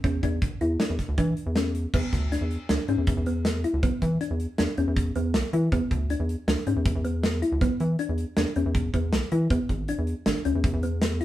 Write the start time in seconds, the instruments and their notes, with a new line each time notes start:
0.04 analog synth bass E2, synth arpeggio sound C#4, kick, closed hi-hat
0.23 analog synth bass E2, synth arpeggio sound D4, kick, closed hi-hat
0.42 kick, closed hi-hat
0.61 analog synth bass E2, synth arpeggio sound E4, closed hi-hat
0.80 synth arpeggio sound D4, snare, closed hi-hat
0.90 analog synth bass E2
0.99 kick, snare, closed hi-hat
1.08 analog synth bass D2
1.18 analog synth bass E3, synth arpeggio sound D4, kick, closed hi-hat
1.37 closed hi-hat
1.46 analog synth bass E2
1.56 synth arpeggio sound C#4, snare, closed hi-hat
1.75 closed hi-hat
1.94 analog synth bass E2, synth arpeggio sound B3, kick, crash
2.13 analog synth bass D2, kick, snare, closed hi-hat
2.32 synth arpeggio sound D4, snare, closed hi-hat
2.41 analog synth bass E2
2.51 closed hi-hat
2.69 analog synth bass D2, synth arpeggio sound D4, snare, closed hi-hat
2.88 analog synth bass G#2, synth arpeggio sound C#4, closed hi-hat
2.98 analog synth bass E2
3.07 analog synth bass E2, kick, closed hi-hat
3.17 analog synth bass E2
3.26 synth arpeggio sound B3, closed hi-hat
3.45 snare, closed hi-hat
3.64 synth arpeggio sound E4, closed hi-hat
3.74 analog synth bass D2
3.83 analog synth bass B1, synth arpeggio sound B3, kick, closed hi-hat
4.02 analog synth bass E3, kick, closed hi-hat
4.21 synth arpeggio sound D4, closed hi-hat
4.31 analog synth bass E2
4.40 closed hi-hat
4.58 analog synth bass E2, synth arpeggio sound D4, snare, closed hi-hat
4.78 analog synth bass E2, synth arpeggio sound C#4, closed hi-hat
4.88 analog synth bass E2
4.97 kick, closed hi-hat
5.16 analog synth bass E2, synth arpeggio sound B3, closed hi-hat
5.34 analog synth bass B1, snare, closed hi-hat
5.53 analog synth bass E3, synth arpeggio sound E4, closed hi-hat
5.72 analog synth bass E2, synth arpeggio sound B3, kick, closed hi-hat
5.91 analog synth bass D2, kick, closed hi-hat
6.10 synth arpeggio sound D4, closed hi-hat
6.20 analog synth bass E2
6.29 closed hi-hat
6.48 analog synth bass D2, synth arpeggio sound D4, snare, closed hi-hat
6.67 analog synth bass G#2, synth arpeggio sound C#4, closed hi-hat
6.76 analog synth bass E2
6.85 analog synth bass E2, kick, closed hi-hat
6.95 analog synth bass E2
7.04 synth arpeggio sound B3, closed hi-hat
7.23 snare, closed hi-hat
7.42 synth arpeggio sound E4, closed hi-hat
7.52 analog synth bass D2
7.61 analog synth bass B1, synth arpeggio sound B3, kick, closed hi-hat
7.80 analog synth bass E3, closed hi-hat
7.99 synth arpeggio sound D4, closed hi-hat
8.09 analog synth bass E2
8.18 closed hi-hat
8.37 analog synth bass E2, synth arpeggio sound D4, snare, closed hi-hat
8.56 analog synth bass E2, synth arpeggio sound C#4, closed hi-hat
8.66 analog synth bass E2
8.75 kick, closed hi-hat
8.94 analog synth bass E2, synth arpeggio sound B3, kick, closed hi-hat
9.13 analog synth bass B1, snare, closed hi-hat
9.32 analog synth bass E3, synth arpeggio sound E4, closed hi-hat
9.50 analog synth bass E2, synth arpeggio sound B3, kick, closed hi-hat
9.69 analog synth bass G#1, kick, closed hi-hat
9.88 synth arpeggio sound D4, closed hi-hat
9.98 analog synth bass E2
10.07 closed hi-hat
10.26 analog synth bass G#1, synth arpeggio sound D4, snare, closed hi-hat
10.45 analog synth bass D2, synth arpeggio sound C#4, closed hi-hat
10.55 analog synth bass E2
10.64 analog synth bass E2, kick, closed hi-hat
10.73 analog synth bass E2
10.83 synth arpeggio sound B3, closed hi-hat
11.02 snare, closed hi-hat
11.21 synth arpeggio sound E4, closed hi-hat